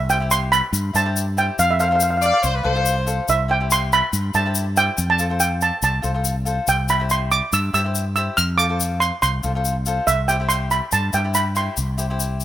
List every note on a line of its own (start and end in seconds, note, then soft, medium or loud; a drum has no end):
0.00 0.61 C2 loud
0.09 0.16 E4 medium
0.09 0.17 G4 medium
0.09 0.17 C5 medium
0.09 0.32 G5 loud
0.09 shaker medium
0.20 0.65 E4 medium
0.20 0.66 G4 medium
0.20 0.66 C5 medium
0.31 0.41 C6 loud
0.31 shaker loud
0.52 0.96 B5 loud
0.52 shaker medium
0.73 0.91 G2 loud
0.73 shaker loud
0.93 1.49 G2 loud
0.93 1.01 E4 medium
0.93 1.02 G4 medium
0.93 1.02 C5 medium
0.93 1.39 A5 medium
0.93 shaker medium
1.05 1.25 E4 medium
1.05 1.25 G4 medium
1.05 1.25 C5 medium
1.16 shaker medium
1.37 1.58 E4 medium
1.37 1.59 G4 medium
1.37 1.59 C5 medium
1.37 1.58 G5 loud
1.37 shaker medium
1.59 2.31 F2 loud
1.59 1.70 F5 loud
1.59 shaker medium
1.71 1.79 E5 medium
1.79 1.86 F4 medium
1.79 1.87 A4 medium
1.79 1.87 C5 medium
1.79 1.87 F5 medium
1.79 shaker medium
1.89 2.35 F4 medium
1.89 2.36 A4 medium
1.89 2.36 C5 loud
1.89 1.94 F5 medium
1.95 2.01 F5 medium
2.00 2.09 F5 medium
2.00 shaker loud
2.10 2.16 F5 medium
2.17 2.24 F5 medium
2.22 2.42 D5 loud
2.22 2.32 F5 medium
2.22 shaker medium
2.33 2.39 F5 medium
2.43 2.62 C2 loud
2.43 2.55 C5 loud
2.43 shaker medium
2.54 2.64 B4 medium
2.63 3.19 C2 loud
2.63 2.71 F4 loud
2.63 2.71 A4 medium
2.63 3.15 C5 loud
2.63 2.72 C5 loud
2.75 2.95 F4 loud
2.75 2.95 A4 loud
2.75 2.95 C5 loud
2.85 shaker medium
3.06 3.28 F4 medium
3.06 3.28 A4 medium
3.06 3.29 C5 loud
3.06 shaker medium
3.28 4.01 C2 loud
3.28 3.51 E5 loud
3.28 shaker medium
3.48 3.56 E4 medium
3.48 3.56 G4 medium
3.48 3.56 C5 loud
3.48 3.72 G5 medium
3.60 4.05 E4 medium
3.60 4.05 G4 medium
3.60 4.06 C5 medium
3.71 3.91 C6 loud
3.71 shaker loud
3.92 4.36 B5 loud
3.92 shaker medium
4.13 4.31 G2 loud
4.13 shaker loud
4.34 4.89 G2 medium
4.34 4.41 E4 medium
4.34 4.42 G4 medium
4.34 4.42 C5 loud
4.34 4.78 A5 medium
4.34 shaker medium
4.46 4.65 E4 medium
4.46 4.65 G4 medium
4.46 4.65 C5 medium
4.55 shaker loud
4.76 4.98 E4 medium
4.76 4.98 G4 medium
4.76 4.98 C5 medium
4.76 5.11 G5 loud
4.76 shaker medium
4.98 5.70 F2 loud
4.98 shaker loud
5.10 5.42 A5 loud
5.19 5.26 F4 medium
5.19 5.27 A4 medium
5.19 5.27 C5 medium
5.19 shaker medium
5.30 5.75 F4 medium
5.30 5.75 A4 medium
5.30 5.75 C5 medium
5.40 5.60 G5 medium
5.40 shaker loud
5.61 5.82 A5 medium
5.61 shaker medium
5.82 6.01 C2 loud
5.82 6.23 A5 medium
5.82 shaker medium
6.02 6.58 C2 medium
6.02 6.10 F4 medium
6.02 6.11 A4 medium
6.02 6.11 C5 medium
6.02 shaker medium
6.14 6.34 F4 medium
6.14 6.35 A4 medium
6.14 6.35 C5 medium
6.25 shaker loud
6.45 6.67 F4 medium
6.45 6.68 A4 medium
6.45 6.68 C5 loud
6.45 shaker medium
6.67 7.40 C2 loud
6.67 6.90 G5 loud
6.67 shaker medium
6.88 6.96 E4 medium
6.88 6.96 G4 medium
6.88 6.97 C5 medium
6.88 7.11 B5 loud
6.88 shaker medium
7.00 7.45 E4 medium
7.00 7.45 G4 medium
7.00 7.45 C5 medium
7.10 7.33 C6 medium
7.10 shaker medium
7.31 7.54 D6 loud
7.31 shaker medium
7.53 7.71 G2 loud
7.53 7.63 E6 loud
7.53 shaker loud
7.73 8.28 G2 medium
7.73 7.81 E4 medium
7.73 7.81 G4 medium
7.73 7.82 C5 medium
7.73 8.14 E6 medium
7.73 shaker medium
7.84 8.04 E4 medium
7.84 8.04 G4 medium
7.84 8.05 C5 medium
7.95 shaker medium
8.16 8.38 E4 medium
8.16 8.38 G4 medium
8.16 8.38 C5 medium
8.16 8.38 E6 loud
8.16 shaker medium
8.37 9.10 F2 loud
8.37 8.59 F6 loud
8.37 shaker medium
8.58 8.65 F4 medium
8.58 8.66 A4 medium
8.58 8.66 C5 medium
8.58 8.98 D6 loud
8.58 shaker medium
8.69 9.14 F4 medium
8.69 9.15 A4 medium
8.69 9.15 C5 medium
8.80 shaker medium
9.00 9.10 C6 loud
9.00 shaker medium
9.22 9.41 C2 loud
9.22 9.82 C6 loud
9.22 shaker medium
9.43 9.98 C2 medium
9.43 9.51 F4 medium
9.43 9.51 A4 medium
9.43 9.51 C5 medium
9.43 shaker medium
9.55 9.74 F4 medium
9.55 9.75 A4 medium
9.55 9.75 C5 loud
9.65 shaker medium
9.86 10.08 F4 loud
9.86 10.08 A4 medium
9.86 10.09 C5 medium
9.86 shaker medium
10.07 10.80 C2 loud
10.07 10.29 E5 loud
10.07 shaker medium
10.28 10.36 E4 medium
10.28 10.36 G4 medium
10.28 10.36 C5 medium
10.28 10.50 G5 medium
10.28 shaker medium
10.40 10.85 E4 medium
10.40 10.85 G4 medium
10.40 10.85 C5 loud
10.49 10.71 C6 loud
10.49 shaker medium
10.71 10.93 B5 medium
10.71 shaker medium
10.92 11.11 G2 loud
10.92 11.12 A5 loud
10.92 shaker medium
11.13 11.68 G2 loud
11.13 11.20 E4 medium
11.13 11.21 G4 medium
11.13 11.21 C5 medium
11.13 11.36 G5 medium
11.13 shaker medium
11.24 11.44 E4 medium
11.24 11.44 G4 medium
11.24 11.44 C5 medium
11.34 11.55 B5 loud
11.34 shaker medium
11.55 11.77 E4 medium
11.55 11.77 G4 medium
11.55 11.78 C5 medium
11.55 12.45 C6 medium
11.55 shaker medium
11.77 12.45 C2 loud
11.77 shaker medium
11.98 12.05 E4 medium
11.98 12.05 G4 medium
11.98 12.06 C5 medium
11.98 shaker medium
12.10 12.45 E4 medium
12.10 12.45 G4 medium
12.10 12.45 C5 loud
12.20 shaker medium
12.40 shaker medium